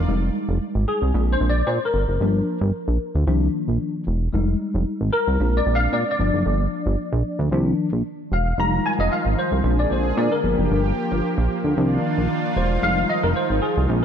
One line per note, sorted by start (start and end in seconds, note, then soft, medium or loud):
0.08 0.30 F1 loud
0.08 1.10 G3 soft
0.08 1.11 G#3 medium
0.08 1.11 D#4 medium
0.49 0.59 F1 loud
0.75 0.86 G#1 medium
0.88 1.34 G#4 medium
1.02 1.12 C2 medium
1.14 1.36 A#1 loud
1.14 1.50 G#3 medium
1.14 1.51 C4 soft
1.14 1.51 D4 medium
1.33 1.51 C5 loud
1.41 1.62 A#1 medium
1.50 1.68 D5 loud
1.67 1.79 A#2 loud
1.67 1.86 C5 medium
1.85 3.14 A#4 medium
1.94 2.05 G1 medium
2.08 2.18 F#1 medium
2.20 2.42 G1 loud
2.20 2.57 F3 medium
2.20 2.57 A#3 soft
2.20 2.58 D4 medium
2.61 2.72 G1 loud
2.88 2.98 A#1 medium
3.15 3.25 D2 medium
3.27 3.49 C2 loud
3.27 4.03 D#3 medium
3.27 4.03 F3 medium
3.27 4.03 A#3 soft
3.27 4.03 D4 medium
3.68 3.78 A#1 medium
4.07 4.28 E1 medium
4.33 4.55 F1 loud
4.33 5.09 G3 medium
4.33 5.09 G#3 soft
4.33 5.09 D#4 medium
4.74 4.84 F1 loud
5.01 5.11 G#1 medium
5.13 5.58 A#4 medium
5.28 5.37 C2 loud
5.39 5.61 A#1 loud
5.39 6.15 G#3 medium
5.39 6.15 C4 soft
5.39 6.16 D4 medium
5.57 5.75 D5 loud
5.66 5.88 A#1 loud
5.75 5.93 F5 loud
5.93 6.04 A#2 loud
5.93 6.10 D5 loud
6.11 7.39 D5 medium
6.19 6.31 G1 loud
6.19 7.48 F3 medium
6.19 7.48 A#3 soft
6.19 7.48 D4 medium
6.34 6.44 F#1 medium
6.46 6.67 G1 loud
6.86 6.96 G1 loud
7.13 7.23 A#1 loud
7.39 7.49 D2 medium
7.51 7.73 C2 loud
7.51 7.88 D#3 medium
7.51 7.88 F3 soft
7.51 7.88 A#3 soft
7.51 7.89 D4 medium
7.93 8.03 A#1 medium
8.32 8.53 E1 medium
8.32 8.60 F5 medium
8.58 8.80 F1 loud
8.58 9.64 D#3 medium
8.58 9.64 F3 medium
8.58 9.60 G3 medium
8.58 9.61 G#3 soft
8.58 9.61 D#4 medium
8.58 9.64 F4 medium
8.58 8.86 A#5 loud
8.86 8.92 G#5 loud
8.99 9.09 F1 loud
8.99 9.12 D#5 loud
9.12 9.39 F5 medium
9.25 9.35 G#1 loud
9.39 9.80 C5 medium
9.52 9.62 C2 loud
9.64 9.86 A#1 loud
9.64 10.44 D3 medium
9.64 10.40 G#3 medium
9.64 12.80 A#3 medium
9.64 10.40 C4 medium
9.64 10.41 D4 medium
9.64 10.44 G#4 medium
9.79 9.92 D5 medium
9.91 10.12 A#1 medium
9.91 10.19 C5 medium
10.17 10.29 A#2 loud
10.17 10.32 D5 medium
10.32 11.60 A#4 medium
10.43 10.55 G1 medium
10.43 11.72 F3 soft
10.43 11.76 F3 medium
10.43 11.73 A#3 soft
10.43 11.73 D4 medium
10.43 11.76 G4 medium
10.58 10.68 F#1 medium
10.71 10.92 G1 loud
11.11 11.21 G1 loud
11.38 11.48 A#1 medium
11.64 11.74 D2 medium
11.76 11.98 C2 loud
11.76 12.81 D#3 medium
11.76 12.52 D#3 soft
11.76 12.52 F3 soft
11.76 12.53 A#3 medium
11.76 12.82 D4 medium
11.76 12.53 D4 medium
11.76 13.87 F4 medium
12.18 12.28 A#1 medium
12.56 12.78 E1 medium
12.56 12.84 C5 medium
12.82 13.04 F1 loud
12.82 13.88 D#3 medium
12.82 13.88 F3 medium
12.82 13.58 G3 medium
12.82 13.58 G#3 medium
12.82 13.59 D#4 medium
12.82 13.10 F5 loud
13.09 13.24 D#5 loud
13.23 13.34 F1 loud
13.23 13.29 A#4 loud
13.36 13.63 C5 medium
13.50 13.60 G#1 loud
13.62 14.04 G#4 medium
13.77 13.87 C2 loud
13.88 14.05 A#1 loud
13.88 14.05 D3 medium
13.88 14.05 G#3 medium
13.88 14.05 A#3 medium
13.88 14.05 C4 medium
13.88 14.05 D4 medium
13.88 14.05 G#4 medium